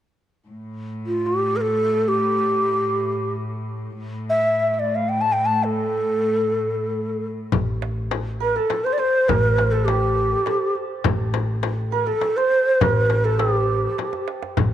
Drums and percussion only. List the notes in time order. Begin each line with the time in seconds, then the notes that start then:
7.52 frame drum, tombak dum
7.82 tombak tek
8.11 tombak tek, frame drum
8.70 tombak tek, frame drum
9.00 tombak ka
9.29 frame drum, tombak dum
9.58 tombak tek, frame drum
9.88 tombak tek, frame drum
10.46 tombak tek, frame drum
10.75 tombak ka
11.04 frame drum, tombak dum
11.34 tombak tek, frame drum
11.63 tombak tek, frame drum
12.21 tombak tek, frame drum
12.51 tombak ka
12.81 tombak dum, frame drum
13.10 tombak tek, frame drum
13.39 tombak tek, frame drum
13.69 tombak ka
13.98 tombak tek, frame drum
14.13 tombak ka
14.28 tombak tek
14.43 tombak ka
14.57 tombak dum, frame drum